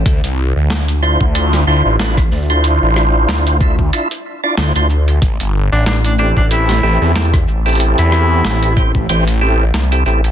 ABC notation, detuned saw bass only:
X:1
M:4/4
L:1/16
Q:"Swing 16ths" 1/4=93
K:Am
V:1 name="Detuned saw bass" clef=bass
D,, C,,2 D,,4 D,,3 D,, A,,,3 D,,2- | D,, A,,,3 D,,4 z4 D,, D,,3 | A,,, G,,,2 A,,,4 A,,,3 A,,, E,,3 A,,,2- | A,,, E,,3 A,,,4 A,,,4 z2 A,,,2 |]